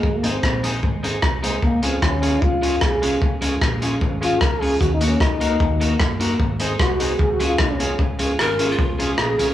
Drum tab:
HH |-x-x-x-x|-x-x-x-x|-x-x-x-o|px-x-x-x|
SD |--r---r-|--r---r-|--r---r-|--r---r-|
BD |o-o-o-o-|o-o-o-o-|o-o-o-o-|o-o-o-o-|

HH |-x-x-x-x|-x-x-x-x|
SD |--r---r-|--r---r-|
BD |o-o-o-o-|o---o---|